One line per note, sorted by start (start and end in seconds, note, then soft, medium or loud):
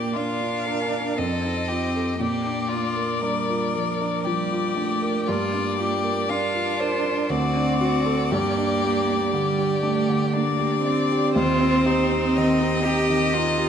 0.00 1.14 A#2 soft
0.00 0.15 A#3 medium
0.00 0.16 D4 soft
0.00 0.41 F4 soft
0.00 0.15 G4 soft
0.00 0.31 A#4 soft
0.00 0.18 D5 soft
0.13 1.19 D4 medium
0.13 0.57 D4 soft
0.13 0.67 F4 soft
0.13 1.20 F5 soft
0.41 0.82 F4 soft
0.65 1.18 A#4 soft
0.65 1.08 A#4 soft
0.92 1.18 D4 soft
1.17 2.18 F2 soft
1.17 2.19 C4 medium
1.17 1.70 A4 soft
1.17 2.23 D#5 soft
1.44 1.85 D#4 soft
1.68 2.11 F4 soft
1.68 2.19 G4 soft
1.96 2.21 A4 soft
2.19 5.24 A#2 soft
2.19 3.23 A#3 medium
2.19 2.70 G4 soft
2.19 4.25 D5 soft
2.46 2.87 D4 soft
2.69 3.23 F4 soft
2.69 3.13 F4 soft
2.96 3.38 A#4 soft
3.21 3.75 G3 medium
3.21 3.65 D4 soft
3.21 4.26 A#4 soft
3.49 3.91 F4 soft
3.74 4.26 F3 soft
3.74 4.17 A#4 soft
4.01 4.42 D4 soft
4.24 4.67 F3 soft
4.24 4.78 G3 medium
4.24 5.29 G4 soft
4.24 5.26 D5 soft
4.52 4.93 F4 soft
4.76 5.30 A3 medium
4.76 5.18 D4 soft
5.02 5.28 A#4 soft
5.28 7.26 G2 soft
5.28 6.29 A#3 medium
5.28 5.78 F4 medium
5.28 6.31 D5 soft
5.54 5.95 D4 soft
5.79 6.20 F4 soft
5.79 6.32 G4 medium
6.04 6.45 A#4 soft
6.29 6.70 D4 soft
6.29 7.33 D4 medium
6.29 7.31 F4 soft
6.29 6.82 F5 soft
6.54 6.95 F4 soft
6.80 7.21 A#4 soft
6.80 7.31 C5 soft
7.04 7.30 D4 soft
7.29 8.28 D2 soft
7.29 8.33 C4 medium
7.29 7.79 F#4 soft
7.29 10.31 D5 soft
7.56 7.96 D4 soft
7.80 8.33 F#4 soft
7.80 8.21 F#4 soft
8.06 8.31 A4 soft
8.32 11.32 G2 medium
8.32 9.33 A#3 medium
8.32 9.33 G4 medium
8.58 8.98 D4 soft
8.85 9.24 G4 soft
9.09 9.49 D4 soft
9.32 9.73 D3 soft
9.32 9.82 G3 medium
9.32 10.35 G4 soft
9.59 9.98 G4 soft
9.83 10.36 A3 medium
9.83 10.23 D4 soft
10.09 10.49 D3 soft
10.32 10.82 A#3 medium
10.32 11.34 D4 medium
10.32 10.74 D4 soft
10.32 11.33 D5 soft
10.59 11.00 G4 soft
10.83 12.85 C4 medium
10.83 11.26 D4 soft
11.12 11.36 G4 soft
11.35 13.69 D#2 medium
11.35 11.87 F4 medium
11.35 12.39 C5 medium
11.61 12.01 C4 soft
11.86 13.33 D#4 medium
11.86 12.26 G4 soft
12.12 12.52 C4 soft
12.37 12.77 D#3 soft
12.37 13.69 D#5 medium
12.60 13.00 G4 soft
12.83 13.25 C4 soft
12.83 13.36 G4 medium
13.10 13.49 D#3 soft
13.33 13.69 C4 soft
13.33 13.69 D#4 medium
13.33 13.69 F4 medium
13.58 13.69 G4 soft